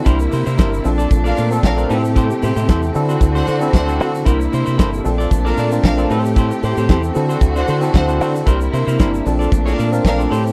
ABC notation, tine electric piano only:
X:1
M:4/4
L:1/16
Q:1/4=114
K:Bblyd
V:1 name="Tine electric piano"
[DEGB]3 z [DEGB]2 [CDFA]4 z [CDFA]2 [CDFB] [CEGA]2- | [CEGA]3 z [CEGA]2 [CE^FA]4 z [CEFA]2 [CEFA]2 z | [DEGB]3 z [DEGA]2 [CDFA]4 z [CDFB]2 [CDFA] [CEGA]2- | [CEGA]3 z [CEGA]2 [CE^FA]4 z [CEFA]2 [CEFA]2 z |
[DEGB]3 z [DEGB]2 [CDFA]4 z [CDFB]2 [CDFA] [CEGA]2 |]